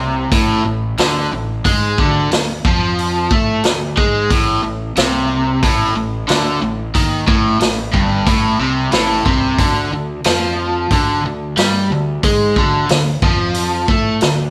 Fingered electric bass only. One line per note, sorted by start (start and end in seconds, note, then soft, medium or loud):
0.00 0.28 C2 medium
0.32 0.63 A1 medium
0.66 0.97 A1 medium
0.99 1.30 D2 medium
1.32 1.63 A1 medium
1.65 1.96 G#2 medium
1.98 2.29 D2 medium
2.31 2.62 D2 medium
2.65 3.27 F2 medium
3.31 3.62 A2 medium
3.64 3.95 D2 medium
3.98 4.28 G#2 loud
4.30 4.61 A1 medium
4.64 4.95 A1 medium
4.97 5.59 C2 medium
5.63 5.94 A1 medium
5.95 6.26 A1 medium
6.29 6.60 D2 medium
6.62 6.92 A1 medium
6.95 7.26 D#2 medium
7.28 7.59 A1 medium
7.61 7.92 A1 medium
7.94 8.25 G1 medium
8.27 8.58 A1 medium
8.59 8.90 C2 medium
8.93 9.24 A1 medium
9.26 9.57 C2 medium
9.59 9.90 D2 medium
9.92 10.23 D2 medium
10.26 10.87 F2 medium
10.91 11.22 D2 medium
11.24 11.55 D2 medium
11.57 11.88 G2 medium
11.90 12.21 D2 medium
12.24 12.54 G#2 medium
12.56 12.87 D2 medium
12.89 13.20 D2 medium
13.22 13.84 F2 medium
13.88 14.19 A2 medium
14.22 14.50 D2 medium